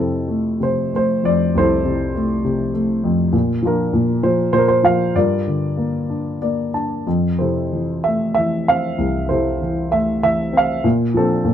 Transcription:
Already playing: F2 C3 C4 E4 A4
0.28 A3
0.60 C3 C5
0.93 A3 C5
1.23 F2 D5
1.55 C2 E4 C5
1.59 A4
1.85 C3
2.15 A3
2.45 C3
2.74 A3
3.04 F2
3.33 A#2
3.62 F3 D4 F4
3.67 A#4
3.93 A#2
4.23 F3 C5
4.52 A#2 C5
4.58 A#4
4.68 C5
4.83 F3 F5
5.15 G2 F4 A#4 D5
5.47 D3
5.77 A#3
6.10 D4
6.42 A#3 D5
6.74 D4 A5
7.07 F2
7.39 C3 E4 A4 C5
7.72 E3
8.04 A3 E5
8.35 E3 E5
8.68 C4 F5
8.98 C2
9.29 C3 E4 A4 C5
9.61 E3
9.91 A3 E5
10.23 E3 E5
10.53 C4
10.57 F5
10.84 A#2
11.14 F3 C4 A4
11.18 D4
11.45 A#2

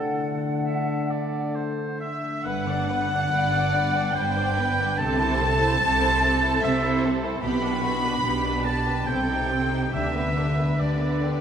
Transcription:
Already playing: D3 A3 D4 A4 F#5
0.19 D4
0.41 A4
0.64 D4 E5
0.86 D5
1.10 D5 A5
1.32 D5
1.54 C5 A5
1.78 A4
2.00 D4 E5
2.23 A3
2.44 G1 G2 B3 B4 F#5
2.66 D3 D4 D5
2.88 B3 B4
3.09 D4 D5
3.28 G1 G2 B3 G4 B4 D5
3.51 D4 B4 D5
3.72 B3 B4 D5
3.93 D4 D5 G5
4.14 G1 G2 B3 B4 C5 D5 G5
4.36 D4 B4 D5
4.56 B3 D4 B4
4.77 B3 D4 D5
4.98 C2 C3 C4 A4 A5
5.19 A3 E4 C5
5.40 C4 A4
5.60 E4 C5
5.81 C2 C3 C4 A4
6.01 E4 C5
6.21 C4 A4 E5
6.43 E4 C5 A5
6.63 C2 C3 C4 A4 E5
6.83 E4 C5
7.04 C4 E4 A4
7.23 C4 E4 C5
7.42 B1 B2 B3 G4 B5
7.62 B3 D4 B4
7.81 B3 D4 F#4 G4
8.02 B3 D4 B4
8.22 B1 B2 B3 G4
8.43 D4 B4 D5
8.63 B3 G4 B4 A5
8.86 D4 B4 G5
9.06 C2 C3 C4 A4 G5
9.28 G3 D#4 G4
9.48 C4 A4 C5
9.71 D#4 G4
9.91 D2 D3 D4 G4 B4 E5
10.14 B3 B4
10.36 D4 G4
10.57 B3 G4 B4
10.78 D2 D3 D4 G4 B4 D5
11.00 B3 B4 D5
11.21 D4 G4 G5

